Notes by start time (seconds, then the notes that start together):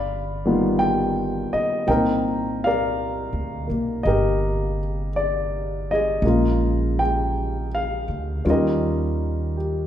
Already playing: G1 D5 F5 B5
0.45 D#3 G3 B3 F4
0.79 G5
1.53 D#5, muted upright bass stroke
1.87 C2 A#2 A#3 C4 D#4 A#4 D#5 G5
2.64 A#4 D5 F5
3.33 D2
3.67 B1 A#3
4.03 G1 A#4 D#5
4.07 G4
5.16 D5
5.91 G#4 D#5
6.22 A#1 C#3 G#3 A#3
6.27 F4
6.99 G5
7.75 F5
8.08 D2
8.45 D#2 D#3 G3 C#4 F4
8.50 G4 A#4 D#5
9.57 G4